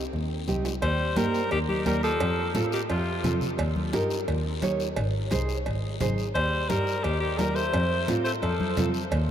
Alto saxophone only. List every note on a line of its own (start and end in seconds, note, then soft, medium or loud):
0.82 1.18 C5 medium
1.17 1.51 A#4 medium
1.52 1.59 G4 loud
1.69 1.85 G4 medium
1.87 2.02 A#4 medium
2.04 2.52 A4 medium
2.73 2.81 G4 medium
2.90 3.38 F4 medium
6.35 6.71 C5 loud
6.69 7.05 A#4 medium
7.04 7.20 G4 medium
7.20 7.40 G4 medium
7.38 7.57 A#4 medium
7.55 8.07 C5 loud
8.25 8.32 C5 medium
8.43 8.91 A4 medium